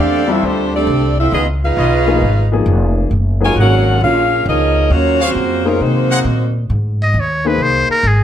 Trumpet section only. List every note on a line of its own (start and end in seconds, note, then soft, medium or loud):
0.00 0.67 G4 medium
0.00 0.67 A4 medium
0.00 0.67 D5 medium
0.00 0.67 F5 medium
1.76 2.46 F4 medium
1.76 2.46 B4 medium
1.76 2.46 C#5 medium
1.76 2.46 D#5 medium
3.55 4.25 F#4 medium
3.55 4.25 G#4 medium
3.55 4.25 A#4 medium
3.55 4.24 F#5 medium
5.20 5.30 F#4 medium
5.20 5.30 G#4 medium
5.20 5.30 C#5 medium
5.20 5.30 F5 loud
6.10 6.20 G#4 medium
6.10 6.20 A#4 medium
6.10 6.20 C5 medium
6.10 6.20 F#5 loud